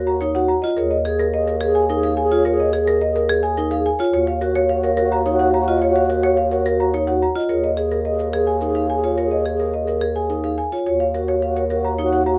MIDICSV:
0, 0, Header, 1, 5, 480
1, 0, Start_track
1, 0, Key_signature, -6, "minor"
1, 0, Tempo, 560748
1, 658, Time_signature, 3, 2, 24, 8
1, 10602, End_track
2, 0, Start_track
2, 0, Title_t, "Marimba"
2, 0, Program_c, 0, 12
2, 0, Note_on_c, 0, 70, 87
2, 59, Note_on_c, 0, 82, 64
2, 93, Note_off_c, 0, 70, 0
2, 177, Note_on_c, 0, 73, 70
2, 214, Note_off_c, 0, 82, 0
2, 299, Note_on_c, 0, 78, 77
2, 334, Note_off_c, 0, 73, 0
2, 414, Note_on_c, 0, 82, 69
2, 454, Note_off_c, 0, 78, 0
2, 530, Note_on_c, 0, 75, 66
2, 573, Note_off_c, 0, 82, 0
2, 656, Note_on_c, 0, 70, 82
2, 691, Note_off_c, 0, 75, 0
2, 776, Note_on_c, 0, 75, 67
2, 813, Note_off_c, 0, 70, 0
2, 900, Note_on_c, 0, 68, 66
2, 933, Note_off_c, 0, 75, 0
2, 1023, Note_on_c, 0, 70, 95
2, 1055, Note_off_c, 0, 68, 0
2, 1143, Note_on_c, 0, 75, 75
2, 1176, Note_off_c, 0, 70, 0
2, 1262, Note_on_c, 0, 70, 66
2, 1296, Note_off_c, 0, 75, 0
2, 1377, Note_on_c, 0, 68, 88
2, 1416, Note_off_c, 0, 70, 0
2, 1498, Note_on_c, 0, 80, 75
2, 1534, Note_off_c, 0, 68, 0
2, 1622, Note_on_c, 0, 70, 77
2, 1654, Note_off_c, 0, 80, 0
2, 1741, Note_on_c, 0, 77, 77
2, 1776, Note_off_c, 0, 70, 0
2, 1857, Note_on_c, 0, 80, 71
2, 1895, Note_off_c, 0, 77, 0
2, 1979, Note_on_c, 0, 73, 69
2, 2014, Note_off_c, 0, 80, 0
2, 2098, Note_on_c, 0, 70, 85
2, 2135, Note_off_c, 0, 73, 0
2, 2225, Note_on_c, 0, 75, 68
2, 2254, Note_off_c, 0, 70, 0
2, 2338, Note_on_c, 0, 68, 73
2, 2376, Note_off_c, 0, 75, 0
2, 2461, Note_on_c, 0, 70, 100
2, 2494, Note_off_c, 0, 68, 0
2, 2580, Note_on_c, 0, 75, 74
2, 2615, Note_off_c, 0, 70, 0
2, 2702, Note_on_c, 0, 70, 70
2, 2735, Note_off_c, 0, 75, 0
2, 2820, Note_on_c, 0, 68, 93
2, 2855, Note_off_c, 0, 70, 0
2, 2935, Note_on_c, 0, 80, 77
2, 2975, Note_off_c, 0, 68, 0
2, 3059, Note_on_c, 0, 70, 76
2, 3093, Note_off_c, 0, 80, 0
2, 3177, Note_on_c, 0, 77, 76
2, 3214, Note_off_c, 0, 70, 0
2, 3303, Note_on_c, 0, 80, 74
2, 3334, Note_off_c, 0, 77, 0
2, 3416, Note_on_c, 0, 73, 71
2, 3456, Note_off_c, 0, 80, 0
2, 3529, Note_off_c, 0, 73, 0
2, 3539, Note_on_c, 0, 73, 86
2, 3658, Note_on_c, 0, 77, 72
2, 3695, Note_off_c, 0, 73, 0
2, 3777, Note_on_c, 0, 70, 68
2, 3814, Note_off_c, 0, 77, 0
2, 3900, Note_on_c, 0, 73, 92
2, 3934, Note_off_c, 0, 70, 0
2, 4019, Note_on_c, 0, 77, 80
2, 4055, Note_off_c, 0, 73, 0
2, 4143, Note_on_c, 0, 73, 68
2, 4174, Note_off_c, 0, 77, 0
2, 4256, Note_on_c, 0, 70, 98
2, 4296, Note_off_c, 0, 73, 0
2, 4382, Note_on_c, 0, 82, 78
2, 4413, Note_off_c, 0, 70, 0
2, 4501, Note_on_c, 0, 73, 77
2, 4535, Note_off_c, 0, 82, 0
2, 4618, Note_on_c, 0, 78, 83
2, 4655, Note_off_c, 0, 73, 0
2, 4742, Note_on_c, 0, 82, 73
2, 4774, Note_off_c, 0, 78, 0
2, 4862, Note_on_c, 0, 75, 65
2, 4896, Note_off_c, 0, 82, 0
2, 4980, Note_on_c, 0, 73, 80
2, 5016, Note_off_c, 0, 75, 0
2, 5100, Note_on_c, 0, 77, 72
2, 5135, Note_off_c, 0, 73, 0
2, 5218, Note_on_c, 0, 70, 61
2, 5255, Note_off_c, 0, 77, 0
2, 5336, Note_on_c, 0, 73, 97
2, 5374, Note_off_c, 0, 70, 0
2, 5455, Note_on_c, 0, 77, 69
2, 5494, Note_off_c, 0, 73, 0
2, 5582, Note_on_c, 0, 73, 62
2, 5613, Note_off_c, 0, 77, 0
2, 5700, Note_on_c, 0, 70, 93
2, 5735, Note_off_c, 0, 73, 0
2, 5821, Note_on_c, 0, 82, 69
2, 5855, Note_off_c, 0, 70, 0
2, 5941, Note_on_c, 0, 73, 77
2, 5975, Note_off_c, 0, 82, 0
2, 6054, Note_on_c, 0, 78, 78
2, 6095, Note_off_c, 0, 73, 0
2, 6184, Note_on_c, 0, 82, 67
2, 6213, Note_off_c, 0, 78, 0
2, 6300, Note_on_c, 0, 75, 61
2, 6336, Note_off_c, 0, 82, 0
2, 6414, Note_on_c, 0, 70, 73
2, 6455, Note_off_c, 0, 75, 0
2, 6538, Note_on_c, 0, 75, 65
2, 6573, Note_off_c, 0, 70, 0
2, 6652, Note_on_c, 0, 68, 57
2, 6694, Note_off_c, 0, 75, 0
2, 6776, Note_on_c, 0, 70, 84
2, 6812, Note_off_c, 0, 68, 0
2, 6892, Note_on_c, 0, 75, 65
2, 6934, Note_off_c, 0, 70, 0
2, 7012, Note_on_c, 0, 70, 62
2, 7052, Note_off_c, 0, 75, 0
2, 7135, Note_on_c, 0, 68, 85
2, 7172, Note_off_c, 0, 70, 0
2, 7250, Note_on_c, 0, 80, 63
2, 7293, Note_off_c, 0, 68, 0
2, 7371, Note_on_c, 0, 70, 66
2, 7411, Note_off_c, 0, 80, 0
2, 7490, Note_on_c, 0, 77, 75
2, 7532, Note_off_c, 0, 70, 0
2, 7615, Note_on_c, 0, 80, 66
2, 7652, Note_off_c, 0, 77, 0
2, 7735, Note_on_c, 0, 73, 61
2, 7773, Note_off_c, 0, 80, 0
2, 7856, Note_on_c, 0, 70, 71
2, 7893, Note_off_c, 0, 73, 0
2, 7973, Note_on_c, 0, 75, 61
2, 8013, Note_off_c, 0, 70, 0
2, 8094, Note_on_c, 0, 68, 61
2, 8132, Note_off_c, 0, 75, 0
2, 8215, Note_on_c, 0, 70, 75
2, 8253, Note_off_c, 0, 68, 0
2, 8335, Note_on_c, 0, 75, 56
2, 8373, Note_off_c, 0, 70, 0
2, 8452, Note_on_c, 0, 70, 58
2, 8493, Note_off_c, 0, 75, 0
2, 8571, Note_on_c, 0, 68, 82
2, 8612, Note_off_c, 0, 70, 0
2, 8695, Note_on_c, 0, 80, 62
2, 8732, Note_off_c, 0, 68, 0
2, 8817, Note_on_c, 0, 70, 57
2, 8853, Note_off_c, 0, 80, 0
2, 8936, Note_on_c, 0, 77, 62
2, 8974, Note_off_c, 0, 70, 0
2, 9055, Note_on_c, 0, 80, 66
2, 9093, Note_off_c, 0, 77, 0
2, 9182, Note_on_c, 0, 73, 57
2, 9213, Note_off_c, 0, 80, 0
2, 9291, Note_off_c, 0, 73, 0
2, 9301, Note_on_c, 0, 73, 74
2, 9418, Note_on_c, 0, 77, 62
2, 9455, Note_off_c, 0, 73, 0
2, 9540, Note_on_c, 0, 70, 66
2, 9574, Note_off_c, 0, 77, 0
2, 9659, Note_on_c, 0, 73, 81
2, 9695, Note_off_c, 0, 70, 0
2, 9779, Note_on_c, 0, 77, 66
2, 9815, Note_off_c, 0, 73, 0
2, 9900, Note_on_c, 0, 73, 61
2, 9934, Note_off_c, 0, 77, 0
2, 10018, Note_on_c, 0, 70, 79
2, 10055, Note_off_c, 0, 73, 0
2, 10139, Note_on_c, 0, 82, 68
2, 10174, Note_off_c, 0, 70, 0
2, 10259, Note_on_c, 0, 73, 66
2, 10295, Note_off_c, 0, 82, 0
2, 10378, Note_on_c, 0, 78, 66
2, 10414, Note_off_c, 0, 73, 0
2, 10497, Note_on_c, 0, 82, 65
2, 10534, Note_off_c, 0, 78, 0
2, 10602, Note_off_c, 0, 82, 0
2, 10602, End_track
3, 0, Start_track
3, 0, Title_t, "Alto flute"
3, 0, Program_c, 1, 73
3, 43, Note_on_c, 1, 66, 57
3, 217, Note_off_c, 1, 66, 0
3, 289, Note_on_c, 1, 66, 42
3, 464, Note_off_c, 1, 66, 0
3, 660, Note_on_c, 1, 68, 41
3, 835, Note_off_c, 1, 68, 0
3, 911, Note_on_c, 1, 68, 53
3, 1086, Note_off_c, 1, 68, 0
3, 1160, Note_on_c, 1, 68, 61
3, 1336, Note_off_c, 1, 68, 0
3, 1412, Note_on_c, 1, 68, 78
3, 1587, Note_off_c, 1, 68, 0
3, 1663, Note_on_c, 1, 68, 85
3, 1838, Note_off_c, 1, 68, 0
3, 1913, Note_on_c, 1, 68, 87
3, 2089, Note_off_c, 1, 68, 0
3, 2158, Note_on_c, 1, 68, 83
3, 2336, Note_off_c, 1, 68, 0
3, 2414, Note_on_c, 1, 68, 78
3, 2590, Note_off_c, 1, 68, 0
3, 2663, Note_on_c, 1, 68, 63
3, 2839, Note_off_c, 1, 68, 0
3, 2911, Note_on_c, 1, 68, 58
3, 3088, Note_off_c, 1, 68, 0
3, 3165, Note_on_c, 1, 68, 49
3, 3342, Note_off_c, 1, 68, 0
3, 3537, Note_on_c, 1, 66, 44
3, 3713, Note_off_c, 1, 66, 0
3, 3786, Note_on_c, 1, 66, 57
3, 3963, Note_off_c, 1, 66, 0
3, 4038, Note_on_c, 1, 66, 70
3, 4214, Note_off_c, 1, 66, 0
3, 4290, Note_on_c, 1, 66, 72
3, 4466, Note_off_c, 1, 66, 0
3, 4544, Note_on_c, 1, 66, 84
3, 4719, Note_off_c, 1, 66, 0
3, 4795, Note_on_c, 1, 66, 77
3, 4970, Note_off_c, 1, 66, 0
3, 5048, Note_on_c, 1, 66, 81
3, 5222, Note_off_c, 1, 66, 0
3, 5302, Note_on_c, 1, 66, 72
3, 5475, Note_off_c, 1, 66, 0
3, 5554, Note_on_c, 1, 66, 67
3, 5727, Note_off_c, 1, 66, 0
3, 5804, Note_on_c, 1, 66, 52
3, 5977, Note_off_c, 1, 66, 0
3, 6054, Note_on_c, 1, 66, 39
3, 6227, Note_off_c, 1, 66, 0
3, 6423, Note_on_c, 1, 68, 37
3, 6597, Note_off_c, 1, 68, 0
3, 6672, Note_on_c, 1, 68, 50
3, 6847, Note_off_c, 1, 68, 0
3, 6918, Note_on_c, 1, 68, 59
3, 7094, Note_off_c, 1, 68, 0
3, 7165, Note_on_c, 1, 68, 68
3, 7343, Note_off_c, 1, 68, 0
3, 7416, Note_on_c, 1, 68, 73
3, 7594, Note_off_c, 1, 68, 0
3, 7665, Note_on_c, 1, 68, 69
3, 7843, Note_off_c, 1, 68, 0
3, 7916, Note_on_c, 1, 68, 65
3, 8094, Note_off_c, 1, 68, 0
3, 8166, Note_on_c, 1, 68, 65
3, 8345, Note_off_c, 1, 68, 0
3, 8419, Note_on_c, 1, 68, 55
3, 8597, Note_off_c, 1, 68, 0
3, 8672, Note_on_c, 1, 68, 43
3, 8849, Note_off_c, 1, 68, 0
3, 8923, Note_on_c, 1, 68, 38
3, 9100, Note_off_c, 1, 68, 0
3, 9296, Note_on_c, 1, 66, 39
3, 9472, Note_off_c, 1, 66, 0
3, 9542, Note_on_c, 1, 66, 55
3, 9720, Note_off_c, 1, 66, 0
3, 9795, Note_on_c, 1, 66, 59
3, 9972, Note_off_c, 1, 66, 0
3, 10045, Note_on_c, 1, 66, 66
3, 10222, Note_off_c, 1, 66, 0
3, 10295, Note_on_c, 1, 66, 83
3, 10473, Note_off_c, 1, 66, 0
3, 10548, Note_on_c, 1, 66, 73
3, 10602, Note_off_c, 1, 66, 0
3, 10602, End_track
4, 0, Start_track
4, 0, Title_t, "Vibraphone"
4, 0, Program_c, 2, 11
4, 0, Note_on_c, 2, 66, 62
4, 96, Note_off_c, 2, 66, 0
4, 185, Note_on_c, 2, 63, 86
4, 307, Note_on_c, 2, 66, 70
4, 337, Note_off_c, 2, 63, 0
4, 457, Note_off_c, 2, 66, 0
4, 546, Note_on_c, 2, 65, 92
4, 666, Note_on_c, 2, 73, 76
4, 697, Note_off_c, 2, 65, 0
4, 817, Note_off_c, 2, 73, 0
4, 903, Note_on_c, 2, 68, 89
4, 1056, Note_off_c, 2, 68, 0
4, 1263, Note_on_c, 2, 70, 80
4, 1383, Note_on_c, 2, 68, 62
4, 1416, Note_off_c, 2, 70, 0
4, 1536, Note_off_c, 2, 68, 0
4, 1624, Note_on_c, 2, 63, 90
4, 1744, Note_on_c, 2, 68, 70
4, 1776, Note_off_c, 2, 63, 0
4, 1896, Note_off_c, 2, 68, 0
4, 1983, Note_on_c, 2, 65, 100
4, 2103, Note_on_c, 2, 73, 74
4, 2136, Note_off_c, 2, 65, 0
4, 2256, Note_off_c, 2, 73, 0
4, 2343, Note_on_c, 2, 68, 95
4, 2496, Note_off_c, 2, 68, 0
4, 2703, Note_on_c, 2, 70, 88
4, 2825, Note_on_c, 2, 68, 75
4, 2856, Note_off_c, 2, 70, 0
4, 2977, Note_off_c, 2, 68, 0
4, 3064, Note_on_c, 2, 63, 96
4, 3182, Note_on_c, 2, 68, 74
4, 3216, Note_off_c, 2, 63, 0
4, 3336, Note_off_c, 2, 68, 0
4, 3424, Note_on_c, 2, 65, 100
4, 3540, Note_on_c, 2, 73, 74
4, 3576, Note_off_c, 2, 65, 0
4, 3695, Note_off_c, 2, 73, 0
4, 3781, Note_on_c, 2, 66, 85
4, 3935, Note_off_c, 2, 66, 0
4, 4139, Note_on_c, 2, 70, 85
4, 4260, Note_on_c, 2, 66, 60
4, 4294, Note_off_c, 2, 70, 0
4, 4415, Note_off_c, 2, 66, 0
4, 4502, Note_on_c, 2, 63, 89
4, 4620, Note_on_c, 2, 66, 71
4, 4656, Note_off_c, 2, 63, 0
4, 4775, Note_off_c, 2, 66, 0
4, 4861, Note_on_c, 2, 65, 93
4, 4982, Note_on_c, 2, 73, 67
4, 5015, Note_off_c, 2, 65, 0
4, 5135, Note_off_c, 2, 73, 0
4, 5220, Note_on_c, 2, 66, 82
4, 5375, Note_off_c, 2, 66, 0
4, 5576, Note_on_c, 2, 70, 87
4, 5698, Note_on_c, 2, 66, 65
4, 5733, Note_off_c, 2, 70, 0
4, 5854, Note_off_c, 2, 66, 0
4, 5938, Note_on_c, 2, 63, 78
4, 6056, Note_on_c, 2, 66, 65
4, 6094, Note_off_c, 2, 63, 0
4, 6213, Note_off_c, 2, 66, 0
4, 6296, Note_on_c, 2, 65, 93
4, 6415, Note_on_c, 2, 73, 70
4, 6453, Note_off_c, 2, 65, 0
4, 6573, Note_off_c, 2, 73, 0
4, 6659, Note_on_c, 2, 68, 73
4, 6814, Note_off_c, 2, 68, 0
4, 7020, Note_on_c, 2, 70, 81
4, 7139, Note_on_c, 2, 68, 54
4, 7175, Note_off_c, 2, 70, 0
4, 7295, Note_off_c, 2, 68, 0
4, 7378, Note_on_c, 2, 63, 83
4, 7496, Note_on_c, 2, 68, 55
4, 7534, Note_off_c, 2, 63, 0
4, 7653, Note_off_c, 2, 68, 0
4, 7738, Note_on_c, 2, 65, 79
4, 7856, Note_on_c, 2, 73, 68
4, 7894, Note_off_c, 2, 65, 0
4, 8013, Note_off_c, 2, 73, 0
4, 8097, Note_on_c, 2, 68, 65
4, 8254, Note_off_c, 2, 68, 0
4, 8459, Note_on_c, 2, 70, 74
4, 8577, Note_on_c, 2, 68, 55
4, 8614, Note_off_c, 2, 70, 0
4, 8734, Note_off_c, 2, 68, 0
4, 8814, Note_on_c, 2, 63, 77
4, 8936, Note_on_c, 2, 68, 61
4, 8973, Note_off_c, 2, 63, 0
4, 9093, Note_off_c, 2, 68, 0
4, 9179, Note_on_c, 2, 65, 76
4, 9300, Note_on_c, 2, 73, 68
4, 9335, Note_off_c, 2, 65, 0
4, 9455, Note_off_c, 2, 73, 0
4, 9540, Note_on_c, 2, 66, 70
4, 9695, Note_off_c, 2, 66, 0
4, 9899, Note_on_c, 2, 70, 77
4, 10023, Note_on_c, 2, 66, 54
4, 10055, Note_off_c, 2, 70, 0
4, 10176, Note_off_c, 2, 66, 0
4, 10259, Note_on_c, 2, 63, 84
4, 10380, Note_on_c, 2, 66, 60
4, 10414, Note_off_c, 2, 63, 0
4, 10535, Note_off_c, 2, 66, 0
4, 10602, End_track
5, 0, Start_track
5, 0, Title_t, "Bass clarinet"
5, 0, Program_c, 3, 71
5, 0, Note_on_c, 3, 39, 60
5, 527, Note_off_c, 3, 39, 0
5, 656, Note_on_c, 3, 39, 69
5, 3407, Note_off_c, 3, 39, 0
5, 3536, Note_on_c, 3, 39, 78
5, 6287, Note_off_c, 3, 39, 0
5, 6417, Note_on_c, 3, 39, 66
5, 9167, Note_off_c, 3, 39, 0
5, 9296, Note_on_c, 3, 39, 65
5, 10602, Note_off_c, 3, 39, 0
5, 10602, End_track
0, 0, End_of_file